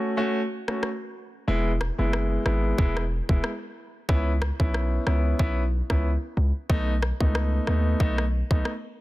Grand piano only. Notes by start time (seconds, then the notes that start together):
Already playing: A3 C#4 F#4
0.17 A3 C#4 F#4
0.68 A3 C#4 F#4
1.48 G#3 B3 E4
1.98 G#3 B3 E4
2.45 G#3 B3 E4
2.78 G#3 B3 E4
3.29 G#3 B3 E4
4.09 B3 C#4 E4
4.59 B3 C#4 E4
5.06 B3 C#4 E4
5.39 B3 C#4 E4
5.90 B3 C#4 E4
6.69 A3 B3 D#4
7.20 A3 B3 D#4
7.67 A3 B3 D#4
8.00 A3 B3 D#4
8.51 A3 B3 D#4